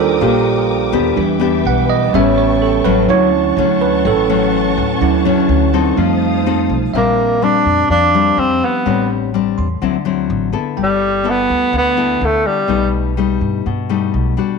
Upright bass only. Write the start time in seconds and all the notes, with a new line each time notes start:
Already playing: D#2
0.21 A#1
0.93 D#2
1.17 E2
1.65 B1
2.14 A1
2.85 A1
3.09 D2
3.57 D2
4.05 A1
4.78 D2
5.01 D2
5.49 D2
5.97 F2
6.69 B1
6.94 A#1
7.66 F2
7.89 F2
8.37 F2
8.86 A1
9.58 E2
9.82 D2
10.30 A1
10.78 G1
11.50 D2
11.73 D2
12.21 D2
12.69 B1
13.41 G2
13.66 G2
14.14 B1